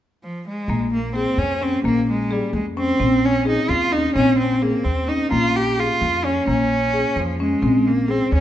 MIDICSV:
0, 0, Header, 1, 4, 480
1, 0, Start_track
1, 0, Tempo, 462250
1, 716, Time_signature, 5, 3, 24, 8
1, 8727, End_track
2, 0, Start_track
2, 0, Title_t, "Marimba"
2, 0, Program_c, 0, 12
2, 723, Note_on_c, 0, 58, 65
2, 984, Note_off_c, 0, 58, 0
2, 1201, Note_on_c, 0, 68, 51
2, 1462, Note_off_c, 0, 68, 0
2, 1677, Note_on_c, 0, 61, 52
2, 1808, Note_off_c, 0, 61, 0
2, 1921, Note_on_c, 0, 58, 66
2, 2183, Note_off_c, 0, 58, 0
2, 2396, Note_on_c, 0, 68, 54
2, 2659, Note_off_c, 0, 68, 0
2, 2876, Note_on_c, 0, 61, 54
2, 3008, Note_off_c, 0, 61, 0
2, 3113, Note_on_c, 0, 60, 70
2, 3377, Note_off_c, 0, 60, 0
2, 3586, Note_on_c, 0, 68, 57
2, 3852, Note_off_c, 0, 68, 0
2, 4079, Note_on_c, 0, 61, 52
2, 4210, Note_off_c, 0, 61, 0
2, 4317, Note_on_c, 0, 60, 68
2, 4580, Note_off_c, 0, 60, 0
2, 4799, Note_on_c, 0, 68, 54
2, 5061, Note_off_c, 0, 68, 0
2, 5277, Note_on_c, 0, 61, 50
2, 5408, Note_off_c, 0, 61, 0
2, 5512, Note_on_c, 0, 58, 63
2, 5776, Note_off_c, 0, 58, 0
2, 5998, Note_on_c, 0, 68, 50
2, 6261, Note_off_c, 0, 68, 0
2, 6480, Note_on_c, 0, 61, 55
2, 6611, Note_off_c, 0, 61, 0
2, 6722, Note_on_c, 0, 58, 67
2, 6984, Note_off_c, 0, 58, 0
2, 7200, Note_on_c, 0, 68, 55
2, 7462, Note_off_c, 0, 68, 0
2, 7685, Note_on_c, 0, 61, 58
2, 7814, Note_off_c, 0, 61, 0
2, 7921, Note_on_c, 0, 60, 65
2, 8182, Note_off_c, 0, 60, 0
2, 8394, Note_on_c, 0, 68, 57
2, 8657, Note_off_c, 0, 68, 0
2, 8727, End_track
3, 0, Start_track
3, 0, Title_t, "Cello"
3, 0, Program_c, 1, 42
3, 244, Note_on_c, 1, 53, 55
3, 463, Note_off_c, 1, 53, 0
3, 493, Note_on_c, 1, 56, 56
3, 931, Note_off_c, 1, 56, 0
3, 969, Note_on_c, 1, 58, 56
3, 1186, Note_off_c, 1, 58, 0
3, 1195, Note_on_c, 1, 60, 62
3, 1440, Note_on_c, 1, 61, 60
3, 1456, Note_off_c, 1, 60, 0
3, 1688, Note_on_c, 1, 60, 54
3, 1703, Note_off_c, 1, 61, 0
3, 1904, Note_off_c, 1, 60, 0
3, 1910, Note_on_c, 1, 58, 67
3, 2136, Note_off_c, 1, 58, 0
3, 2177, Note_on_c, 1, 56, 62
3, 2413, Note_on_c, 1, 55, 55
3, 2429, Note_off_c, 1, 56, 0
3, 2637, Note_off_c, 1, 55, 0
3, 2644, Note_on_c, 1, 56, 57
3, 2750, Note_off_c, 1, 56, 0
3, 2896, Note_on_c, 1, 60, 67
3, 3375, Note_on_c, 1, 61, 69
3, 3391, Note_off_c, 1, 60, 0
3, 3605, Note_off_c, 1, 61, 0
3, 3614, Note_on_c, 1, 63, 67
3, 3840, Note_on_c, 1, 65, 70
3, 3855, Note_off_c, 1, 63, 0
3, 4071, Note_on_c, 1, 63, 65
3, 4087, Note_off_c, 1, 65, 0
3, 4302, Note_off_c, 1, 63, 0
3, 4308, Note_on_c, 1, 61, 72
3, 4535, Note_off_c, 1, 61, 0
3, 4555, Note_on_c, 1, 60, 64
3, 4799, Note_on_c, 1, 58, 63
3, 4814, Note_off_c, 1, 60, 0
3, 5024, Note_on_c, 1, 60, 61
3, 5040, Note_off_c, 1, 58, 0
3, 5283, Note_on_c, 1, 63, 58
3, 5299, Note_off_c, 1, 60, 0
3, 5513, Note_off_c, 1, 63, 0
3, 5519, Note_on_c, 1, 65, 74
3, 5769, Note_on_c, 1, 67, 74
3, 5785, Note_off_c, 1, 65, 0
3, 6017, Note_on_c, 1, 65, 72
3, 6032, Note_off_c, 1, 67, 0
3, 6486, Note_on_c, 1, 61, 65
3, 6502, Note_off_c, 1, 65, 0
3, 6721, Note_off_c, 1, 61, 0
3, 6728, Note_on_c, 1, 61, 74
3, 7461, Note_on_c, 1, 53, 64
3, 7477, Note_off_c, 1, 61, 0
3, 7688, Note_off_c, 1, 53, 0
3, 7703, Note_on_c, 1, 56, 62
3, 8172, Note_on_c, 1, 58, 63
3, 8188, Note_off_c, 1, 56, 0
3, 8412, Note_on_c, 1, 60, 68
3, 8428, Note_off_c, 1, 58, 0
3, 8644, Note_off_c, 1, 60, 0
3, 8663, Note_on_c, 1, 61, 63
3, 8727, Note_off_c, 1, 61, 0
3, 8727, End_track
4, 0, Start_track
4, 0, Title_t, "Upright bass"
4, 0, Program_c, 2, 32
4, 707, Note_on_c, 2, 34, 70
4, 1293, Note_off_c, 2, 34, 0
4, 1425, Note_on_c, 2, 41, 62
4, 1817, Note_off_c, 2, 41, 0
4, 1910, Note_on_c, 2, 34, 67
4, 2494, Note_off_c, 2, 34, 0
4, 2627, Note_on_c, 2, 41, 70
4, 3019, Note_off_c, 2, 41, 0
4, 3112, Note_on_c, 2, 34, 67
4, 3696, Note_off_c, 2, 34, 0
4, 3834, Note_on_c, 2, 39, 73
4, 4223, Note_off_c, 2, 39, 0
4, 4313, Note_on_c, 2, 34, 70
4, 4897, Note_off_c, 2, 34, 0
4, 5035, Note_on_c, 2, 39, 64
4, 5424, Note_off_c, 2, 39, 0
4, 5521, Note_on_c, 2, 34, 70
4, 6101, Note_off_c, 2, 34, 0
4, 6243, Note_on_c, 2, 41, 65
4, 6628, Note_off_c, 2, 41, 0
4, 6721, Note_on_c, 2, 34, 68
4, 7301, Note_off_c, 2, 34, 0
4, 7436, Note_on_c, 2, 41, 69
4, 7824, Note_off_c, 2, 41, 0
4, 7913, Note_on_c, 2, 34, 72
4, 8496, Note_off_c, 2, 34, 0
4, 8638, Note_on_c, 2, 39, 74
4, 8727, Note_off_c, 2, 39, 0
4, 8727, End_track
0, 0, End_of_file